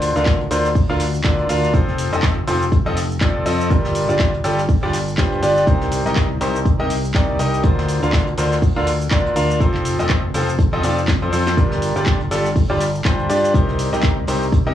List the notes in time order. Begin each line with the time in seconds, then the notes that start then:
Already playing: D2 D3 D4 F4 A#4 C5
0.02 closed hi-hat, open hi-hat, cabasa
0.16 D2 D3 D4 F4 A#4 F5, closed hi-hat, cabasa
0.26 kick, snare, clap, closed hi-hat, cabasa
0.41 closed hi-hat
0.51 D2 D3 D4 F4 A#4 C5, snare, closed hi-hat, open hi-hat, cabasa
0.65 snare, cabasa
0.75 kick, open hi-hat, cabasa
0.90 D2 D3 D4 F4 A#4 F5
1.00 snare, closed hi-hat, open hi-hat, cabasa
1.15 cabasa
1.24 D2 D3 D4 F4 A#4 D5, kick, snare, clap, closed hi-hat, cabasa
1.39 closed hi-hat
1.49 D2 D4 F4 A#4 F5, closed hi-hat, open hi-hat, cabasa
1.63 snare, cabasa
1.74 F1 F3 C4 F4 A4 C5, kick, closed hi-hat, cabasa
1.88 snare
1.98 closed hi-hat, open hi-hat, cabasa
2.12 F1 F3 C4 F4 A4 D#5, snare, cabasa
2.23 kick, snare, clap, closed hi-hat, cabasa
2.48 F1 F3 C4 F4 A4 C5, closed hi-hat, open hi-hat, cabasa
2.62 cabasa
2.72 kick, closed hi-hat, cabasa
2.86 F1 F3 C4 F4 A4 D#5
2.97 closed hi-hat, open hi-hat, cabasa
3.11 cabasa
3.21 F1 F3 C4 F4 A4 D5, kick, snare, clap, closed hi-hat, cabasa
3.46 F2 C4 F4 A4 D#5, closed hi-hat, open hi-hat, cabasa
3.61 cabasa
3.70 G1 G3 D4 F4 G4 A#4, kick, closed hi-hat, cabasa
3.85 snare
3.95 closed hi-hat, open hi-hat, cabasa
4.09 G1 G3 D4 F4 G4 D5, closed hi-hat, cabasa
4.19 kick, snare, clap, closed hi-hat, cabasa
4.34 closed hi-hat
4.44 G1 G3 D4 F4 G4 A4, snare, closed hi-hat, open hi-hat, cabasa
4.58 snare, cabasa
4.69 kick, open hi-hat, cabasa
4.83 G1 G3 D4 F4 G4 D5
4.93 snare, closed hi-hat, open hi-hat, cabasa
5.08 cabasa
5.18 G2 G3 D4 F4 G4 C5, kick, snare, clap, closed hi-hat, cabasa
5.32 closed hi-hat
5.42 G1 D4 F4 G4 D5, closed hi-hat, open hi-hat, cabasa
5.57 snare, cabasa
5.67 C2 C3 D#4 G4 A#4 C5, kick, closed hi-hat, cabasa
5.81 snare
5.91 closed hi-hat, open hi-hat, cabasa
6.06 C2 C3 D#4 G4 A#4 D#5, snare, cabasa
6.16 kick, snare, clap, closed hi-hat, cabasa
6.41 C2 C3 D#4 G4 A#4 C5, closed hi-hat, open hi-hat, cabasa
6.56 cabasa
6.65 kick, closed hi-hat, cabasa
6.80 C2 C3 D#4 G4 A#4 D#5
6.90 closed hi-hat, open hi-hat, cabasa
7.05 cabasa
7.14 C2 C3 D#4 G4 A#4 D5, kick, snare, clap, closed hi-hat, cabasa
7.39 C2 D#4 G4 A#4 D#5, closed hi-hat, open hi-hat, cabasa
7.54 cabasa
7.63 D2 D3 D4 F4 A#4 C5, kick, closed hi-hat, cabasa
7.78 snare
7.88 closed hi-hat, open hi-hat, cabasa
8.03 D2 D3 D4 F4 A#4 F5, closed hi-hat, cabasa
8.13 kick, snare, clap, closed hi-hat, cabasa
8.27 closed hi-hat
8.38 D2 D3 D4 F4 A#4 C5, snare, closed hi-hat, open hi-hat, cabasa
8.52 snare, cabasa
8.62 kick, open hi-hat, cabasa
8.76 D2 D3 D4 F4 A#4 F5
8.86 snare, closed hi-hat, open hi-hat, cabasa
9.02 cabasa
9.11 D2 D3 D4 F4 A#4 D5, kick, snare, clap, closed hi-hat, cabasa
9.26 closed hi-hat
9.36 D2 D4 F4 A#4 F5, closed hi-hat, open hi-hat, cabasa
9.50 snare, cabasa
9.61 F1 F3 C4 F4 A4 C5, kick, closed hi-hat, cabasa
9.74 snare, clap
9.85 closed hi-hat, open hi-hat, cabasa
9.99 F1 F3 C4 F4 A4 D#5, snare, cabasa
10.10 kick, snare, clap, closed hi-hat, cabasa
10.34 F1 F3 C4 F4 A4 C5, closed hi-hat, open hi-hat, cabasa
10.49 cabasa
10.59 kick, closed hi-hat, cabasa
10.73 F1 F3 C4 F4 A4 D#5
10.83 F1 F3 C4 F4 A4 D5, closed hi-hat, open hi-hat, cabasa
10.98 cabasa
11.08 kick, snare, clap, closed hi-hat, cabasa
11.22 F2 F3 C4 F4 A4 C5, closed hi-hat
11.32 F2 C4 F4 A4 C5, closed hi-hat, open hi-hat, cabasa
11.46 snare, closed hi-hat, cabasa
11.57 G1 G3 D4 F4 G4 A#4, kick, closed hi-hat, cabasa
11.72 snare
11.82 closed hi-hat, open hi-hat, cabasa
11.96 G1 G3 D4 F4 G4 D5, closed hi-hat, cabasa
12.06 kick, snare, clap, closed hi-hat, cabasa
12.20 closed hi-hat
12.31 G1 G3 D4 F4 G4 A4, snare, closed hi-hat, open hi-hat, cabasa
12.44 snare, cabasa
12.56 kick, open hi-hat, cabasa
12.70 G1 G3 D4 F4 G4 D5
12.80 snare, closed hi-hat, open hi-hat, cabasa
12.95 cabasa
13.05 G1 G3 D4 F4 G4 C5, kick, snare, clap, closed hi-hat, cabasa
13.19 closed hi-hat
13.29 G2 D4 F4 G4 D5, closed hi-hat, open hi-hat, cabasa
13.44 snare, cabasa
13.54 C2 C3 D#4 G4 A#4 C5, kick, closed hi-hat, cabasa
13.69 snare
13.79 closed hi-hat, open hi-hat, cabasa
13.93 C2 C3 D#4 G4 A#4 D#5, snare, cabasa
14.02 kick, snare, clap, closed hi-hat, cabasa
14.27 C2 C3 D#4 G4 A#4 C5, closed hi-hat, open hi-hat, cabasa
14.43 cabasa
14.52 kick, closed hi-hat, cabasa
14.66 C2 C3 D#4 G4 A#4 D#5